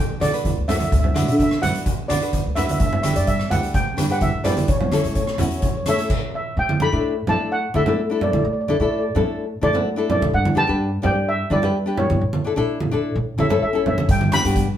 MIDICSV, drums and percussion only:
0, 0, Header, 1, 2, 480
1, 0, Start_track
1, 0, Tempo, 470588
1, 933, Time_signature, 4, 2, 24, 8
1, 15072, End_track
2, 0, Start_track
2, 0, Title_t, "Drums"
2, 218, Note_on_c, 9, 37, 78
2, 218, Note_on_c, 9, 42, 74
2, 219, Note_on_c, 9, 63, 62
2, 320, Note_off_c, 9, 37, 0
2, 320, Note_off_c, 9, 42, 0
2, 321, Note_off_c, 9, 63, 0
2, 345, Note_on_c, 9, 42, 55
2, 447, Note_off_c, 9, 42, 0
2, 457, Note_on_c, 9, 36, 76
2, 459, Note_on_c, 9, 42, 55
2, 463, Note_on_c, 9, 63, 58
2, 559, Note_off_c, 9, 36, 0
2, 561, Note_off_c, 9, 42, 0
2, 565, Note_off_c, 9, 63, 0
2, 701, Note_on_c, 9, 37, 68
2, 701, Note_on_c, 9, 42, 74
2, 703, Note_on_c, 9, 64, 67
2, 803, Note_off_c, 9, 37, 0
2, 803, Note_off_c, 9, 42, 0
2, 805, Note_off_c, 9, 64, 0
2, 819, Note_on_c, 9, 63, 62
2, 823, Note_on_c, 9, 42, 50
2, 921, Note_off_c, 9, 63, 0
2, 925, Note_off_c, 9, 42, 0
2, 939, Note_on_c, 9, 36, 98
2, 942, Note_on_c, 9, 42, 60
2, 1041, Note_off_c, 9, 36, 0
2, 1044, Note_off_c, 9, 42, 0
2, 1060, Note_on_c, 9, 64, 60
2, 1162, Note_off_c, 9, 64, 0
2, 1178, Note_on_c, 9, 63, 70
2, 1181, Note_on_c, 9, 37, 78
2, 1181, Note_on_c, 9, 42, 74
2, 1280, Note_off_c, 9, 63, 0
2, 1283, Note_off_c, 9, 37, 0
2, 1283, Note_off_c, 9, 42, 0
2, 1306, Note_on_c, 9, 42, 60
2, 1408, Note_off_c, 9, 42, 0
2, 1420, Note_on_c, 9, 36, 75
2, 1425, Note_on_c, 9, 42, 59
2, 1522, Note_off_c, 9, 36, 0
2, 1527, Note_off_c, 9, 42, 0
2, 1542, Note_on_c, 9, 37, 80
2, 1644, Note_off_c, 9, 37, 0
2, 1660, Note_on_c, 9, 42, 76
2, 1665, Note_on_c, 9, 63, 62
2, 1665, Note_on_c, 9, 64, 70
2, 1762, Note_off_c, 9, 42, 0
2, 1767, Note_off_c, 9, 63, 0
2, 1767, Note_off_c, 9, 64, 0
2, 1780, Note_on_c, 9, 42, 60
2, 1882, Note_off_c, 9, 42, 0
2, 1896, Note_on_c, 9, 42, 63
2, 1898, Note_on_c, 9, 36, 102
2, 1998, Note_off_c, 9, 42, 0
2, 2000, Note_off_c, 9, 36, 0
2, 2140, Note_on_c, 9, 37, 81
2, 2140, Note_on_c, 9, 42, 88
2, 2148, Note_on_c, 9, 63, 69
2, 2242, Note_off_c, 9, 37, 0
2, 2242, Note_off_c, 9, 42, 0
2, 2250, Note_off_c, 9, 63, 0
2, 2262, Note_on_c, 9, 42, 56
2, 2364, Note_off_c, 9, 42, 0
2, 2375, Note_on_c, 9, 42, 62
2, 2377, Note_on_c, 9, 36, 80
2, 2385, Note_on_c, 9, 63, 58
2, 2477, Note_off_c, 9, 42, 0
2, 2479, Note_off_c, 9, 36, 0
2, 2487, Note_off_c, 9, 63, 0
2, 2613, Note_on_c, 9, 37, 74
2, 2613, Note_on_c, 9, 42, 78
2, 2623, Note_on_c, 9, 64, 68
2, 2715, Note_off_c, 9, 37, 0
2, 2715, Note_off_c, 9, 42, 0
2, 2725, Note_off_c, 9, 64, 0
2, 2743, Note_on_c, 9, 42, 61
2, 2750, Note_on_c, 9, 63, 64
2, 2845, Note_off_c, 9, 42, 0
2, 2852, Note_off_c, 9, 63, 0
2, 2853, Note_on_c, 9, 42, 65
2, 2857, Note_on_c, 9, 36, 103
2, 2955, Note_off_c, 9, 42, 0
2, 2959, Note_off_c, 9, 36, 0
2, 2986, Note_on_c, 9, 64, 63
2, 3088, Note_off_c, 9, 64, 0
2, 3094, Note_on_c, 9, 37, 82
2, 3094, Note_on_c, 9, 42, 79
2, 3102, Note_on_c, 9, 63, 66
2, 3196, Note_off_c, 9, 37, 0
2, 3196, Note_off_c, 9, 42, 0
2, 3204, Note_off_c, 9, 63, 0
2, 3219, Note_on_c, 9, 42, 63
2, 3321, Note_off_c, 9, 42, 0
2, 3337, Note_on_c, 9, 42, 59
2, 3338, Note_on_c, 9, 36, 81
2, 3439, Note_off_c, 9, 42, 0
2, 3440, Note_off_c, 9, 36, 0
2, 3462, Note_on_c, 9, 37, 74
2, 3564, Note_off_c, 9, 37, 0
2, 3583, Note_on_c, 9, 63, 66
2, 3583, Note_on_c, 9, 64, 69
2, 3584, Note_on_c, 9, 42, 73
2, 3685, Note_off_c, 9, 63, 0
2, 3685, Note_off_c, 9, 64, 0
2, 3686, Note_off_c, 9, 42, 0
2, 3703, Note_on_c, 9, 42, 57
2, 3805, Note_off_c, 9, 42, 0
2, 3816, Note_on_c, 9, 42, 56
2, 3818, Note_on_c, 9, 36, 102
2, 3918, Note_off_c, 9, 42, 0
2, 3920, Note_off_c, 9, 36, 0
2, 4057, Note_on_c, 9, 37, 85
2, 4057, Note_on_c, 9, 42, 80
2, 4061, Note_on_c, 9, 63, 71
2, 4159, Note_off_c, 9, 37, 0
2, 4159, Note_off_c, 9, 42, 0
2, 4163, Note_off_c, 9, 63, 0
2, 4177, Note_on_c, 9, 42, 53
2, 4279, Note_off_c, 9, 42, 0
2, 4292, Note_on_c, 9, 42, 54
2, 4297, Note_on_c, 9, 36, 75
2, 4303, Note_on_c, 9, 63, 65
2, 4394, Note_off_c, 9, 42, 0
2, 4399, Note_off_c, 9, 36, 0
2, 4405, Note_off_c, 9, 63, 0
2, 4534, Note_on_c, 9, 37, 76
2, 4534, Note_on_c, 9, 42, 73
2, 4540, Note_on_c, 9, 64, 75
2, 4636, Note_off_c, 9, 37, 0
2, 4636, Note_off_c, 9, 42, 0
2, 4642, Note_off_c, 9, 64, 0
2, 4658, Note_on_c, 9, 42, 55
2, 4661, Note_on_c, 9, 63, 72
2, 4760, Note_off_c, 9, 42, 0
2, 4763, Note_off_c, 9, 63, 0
2, 4772, Note_on_c, 9, 42, 58
2, 4778, Note_on_c, 9, 36, 108
2, 4874, Note_off_c, 9, 42, 0
2, 4880, Note_off_c, 9, 36, 0
2, 4900, Note_on_c, 9, 64, 68
2, 5002, Note_off_c, 9, 64, 0
2, 5014, Note_on_c, 9, 63, 72
2, 5020, Note_on_c, 9, 37, 76
2, 5020, Note_on_c, 9, 42, 73
2, 5116, Note_off_c, 9, 63, 0
2, 5122, Note_off_c, 9, 37, 0
2, 5122, Note_off_c, 9, 42, 0
2, 5142, Note_on_c, 9, 42, 56
2, 5244, Note_off_c, 9, 42, 0
2, 5255, Note_on_c, 9, 42, 53
2, 5258, Note_on_c, 9, 36, 75
2, 5357, Note_off_c, 9, 42, 0
2, 5360, Note_off_c, 9, 36, 0
2, 5379, Note_on_c, 9, 37, 78
2, 5481, Note_off_c, 9, 37, 0
2, 5490, Note_on_c, 9, 63, 64
2, 5490, Note_on_c, 9, 64, 67
2, 5495, Note_on_c, 9, 42, 75
2, 5592, Note_off_c, 9, 63, 0
2, 5592, Note_off_c, 9, 64, 0
2, 5597, Note_off_c, 9, 42, 0
2, 5617, Note_on_c, 9, 42, 52
2, 5719, Note_off_c, 9, 42, 0
2, 5732, Note_on_c, 9, 42, 58
2, 5738, Note_on_c, 9, 36, 101
2, 5834, Note_off_c, 9, 42, 0
2, 5840, Note_off_c, 9, 36, 0
2, 5975, Note_on_c, 9, 63, 64
2, 5978, Note_on_c, 9, 37, 85
2, 5978, Note_on_c, 9, 42, 83
2, 6077, Note_off_c, 9, 63, 0
2, 6080, Note_off_c, 9, 37, 0
2, 6080, Note_off_c, 9, 42, 0
2, 6103, Note_on_c, 9, 42, 56
2, 6205, Note_off_c, 9, 42, 0
2, 6220, Note_on_c, 9, 36, 99
2, 6220, Note_on_c, 9, 49, 78
2, 6322, Note_off_c, 9, 36, 0
2, 6322, Note_off_c, 9, 49, 0
2, 6826, Note_on_c, 9, 63, 74
2, 6928, Note_off_c, 9, 63, 0
2, 6936, Note_on_c, 9, 63, 70
2, 7038, Note_off_c, 9, 63, 0
2, 7417, Note_on_c, 9, 64, 70
2, 7519, Note_off_c, 9, 64, 0
2, 7896, Note_on_c, 9, 63, 71
2, 7998, Note_off_c, 9, 63, 0
2, 8018, Note_on_c, 9, 64, 72
2, 8120, Note_off_c, 9, 64, 0
2, 8377, Note_on_c, 9, 64, 71
2, 8479, Note_off_c, 9, 64, 0
2, 8500, Note_on_c, 9, 63, 68
2, 8602, Note_off_c, 9, 63, 0
2, 8858, Note_on_c, 9, 63, 64
2, 8960, Note_off_c, 9, 63, 0
2, 9343, Note_on_c, 9, 64, 71
2, 9445, Note_off_c, 9, 64, 0
2, 9821, Note_on_c, 9, 63, 72
2, 9923, Note_off_c, 9, 63, 0
2, 9942, Note_on_c, 9, 64, 66
2, 10044, Note_off_c, 9, 64, 0
2, 10299, Note_on_c, 9, 64, 71
2, 10401, Note_off_c, 9, 64, 0
2, 10427, Note_on_c, 9, 63, 69
2, 10529, Note_off_c, 9, 63, 0
2, 10663, Note_on_c, 9, 63, 75
2, 10765, Note_off_c, 9, 63, 0
2, 10780, Note_on_c, 9, 63, 65
2, 10882, Note_off_c, 9, 63, 0
2, 11254, Note_on_c, 9, 64, 73
2, 11356, Note_off_c, 9, 64, 0
2, 11741, Note_on_c, 9, 63, 68
2, 11843, Note_off_c, 9, 63, 0
2, 11861, Note_on_c, 9, 64, 69
2, 11963, Note_off_c, 9, 64, 0
2, 12214, Note_on_c, 9, 64, 78
2, 12316, Note_off_c, 9, 64, 0
2, 12340, Note_on_c, 9, 63, 72
2, 12442, Note_off_c, 9, 63, 0
2, 12577, Note_on_c, 9, 63, 74
2, 12679, Note_off_c, 9, 63, 0
2, 13061, Note_on_c, 9, 63, 69
2, 13163, Note_off_c, 9, 63, 0
2, 13653, Note_on_c, 9, 63, 74
2, 13755, Note_off_c, 9, 63, 0
2, 13774, Note_on_c, 9, 64, 69
2, 13876, Note_off_c, 9, 64, 0
2, 14136, Note_on_c, 9, 64, 68
2, 14238, Note_off_c, 9, 64, 0
2, 14258, Note_on_c, 9, 63, 72
2, 14360, Note_off_c, 9, 63, 0
2, 14370, Note_on_c, 9, 36, 109
2, 14370, Note_on_c, 9, 42, 66
2, 14472, Note_off_c, 9, 36, 0
2, 14472, Note_off_c, 9, 42, 0
2, 14493, Note_on_c, 9, 63, 74
2, 14595, Note_off_c, 9, 63, 0
2, 14605, Note_on_c, 9, 37, 88
2, 14605, Note_on_c, 9, 42, 86
2, 14608, Note_on_c, 9, 63, 70
2, 14707, Note_off_c, 9, 37, 0
2, 14707, Note_off_c, 9, 42, 0
2, 14710, Note_off_c, 9, 63, 0
2, 14736, Note_on_c, 9, 42, 66
2, 14838, Note_off_c, 9, 42, 0
2, 14848, Note_on_c, 9, 36, 87
2, 14848, Note_on_c, 9, 42, 67
2, 14950, Note_off_c, 9, 36, 0
2, 14950, Note_off_c, 9, 42, 0
2, 15072, End_track
0, 0, End_of_file